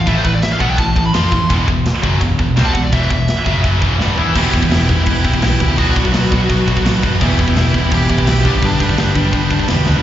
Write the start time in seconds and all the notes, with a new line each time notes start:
0.06 A1 A2 E3 A3 E5, kick, ride bell
0.17 C5
0.24 A1 A2 E3 B4, kick
0.34 D5
0.43 E5, snare, ride bell
0.52 F5
0.59 B1 B2 F#3 B3 F#5, kick
0.70 G5
0.78 A1 A2 E3 A5, kick, ride bell
0.96 A1 A2 E3, kick
1.06 B5
1.14 F2 F3 C4 F4 C6, snare, ride bell
1.32 A1 A2 E3, kick
1.49 E1 E2 B2 E3, kick, ride bell
1.67 E1 E2 B2, kick
1.86 snare, ride bell
2.02 F#1 F#2 C#3 F#3, kick
2.20 E1 E2 B2, kick, ride bell
2.39 E1 E2 B2, kick
2.56 C2 C3 G3 C4, snare, ride bell
2.65 A5
2.74 E1 E2 B2 F#5, kick
2.83 D5
2.92 E1 E2 B2 E3 E5, kick, ride bell
3.10 E1 E2 B2, kick
3.28 snare, ride bell
3.45 F#1 F#2 C#3 F#3, kick
3.63 F#1 F#2 C#3 F#3, kick, ride bell
3.82 E1 E2 B2 E3, kick
3.99 G1 G2 D3 G3, snare
4.16 E2 E3 B3 E4, floor tom
4.34 E1 E2 B2 E3 B3 E4 G4 B4 G5, kick, crash
4.53 E1 E2 B2 E3 B3 E4 G4, kick, crash
4.62 E2 B2, kick
4.70 E1 E2 B2 E3 B3 E4 G4, snare, crash
4.88 E1 E2 B2 E3 B3 E4 G4, kick, crash
4.99 E2 B2
5.05 E2 B2 E3 B3 E4 G4, kick, crash
5.24 B1 E2 B2 E3 B3 E4 G4, kick, crash
5.33 E2 B2, kick
5.41 B1 E2 B2 E3 B3 E4 G4, snare, crash
5.60 D2 E2 B2 E3 B3 E4 G4, kick, crash
5.70 E2 B2
5.77 B1 B2 F#3 B3 D4 F#4 D5 B5, kick, crash
5.95 B1 B2 F#3 B3 D4 F#4, kick, crash
6.05 B2 F#3, kick
6.13 B1 B2 F#3 B3 D4 F#4, snare, crash
6.31 B1 B2 F#3 B3 D4 F#4, kick, crash
6.40 B2 F#3
6.49 B1 B2 F#3 B3 D4 F#4, kick, crash
6.67 B1 B2 F#3 B3 D4 F#4, kick, crash
6.77 B2 F#3, kick
6.85 A1 B2 F#3 B3 D4 F#4, snare, crash
7.02 F#2 B2 F#3 B3 D4 F#4, kick, crash
7.12 B2 F#3
7.20 E1 E2 B2 E3 B3 E4 G4 E5, kick, crash
7.37 E1 E2 B2 E3 B3 E4 G4, kick, crash
7.48 E2 B2, kick
7.56 E1 E2 B2 E3 B3 E4 G4, snare, crash
7.73 E1 E2 B2 E3 B3 E4 G4, kick, crash
7.85 E2 B2
7.91 E2 B2 E3 B3 E4 G4, kick, crash
8.09 B1 E2 B2 E3 B3 E4 G4, kick, crash
8.18 E2 B2, kick
8.26 B1 E2 B2 E3 B3 E4 G4, snare, crash
8.44 G1 G2 D3 G3 B3 D4 G4 D5 B5, kick, crash
8.54 G2 D3
8.62 G1 G2 D3 G3 B3 D4 G4, kick, crash
8.79 G1 G2 D3 G3 B3 D4 G4, kick, crash
8.89 G2 D3, kick
8.97 G1 G2 D3 G3 B3 D4 G4, snare, crash
9.15 G1 G2 D3 G3 B3 D4 G4, kick, crash
9.25 G2 D3
9.32 G1 G2 D3 G3 B3 D4 G4, kick, crash
9.50 G1 G2 D3 G3 B3 D4 G4, kick, crash
9.59 G2 D3, kick
9.68 E1 G2 D3 G3 B3 D4 G4, snare, crash
9.85 D2 G2 D3 G3 B3 D4 G4, snare
9.96 G2 D3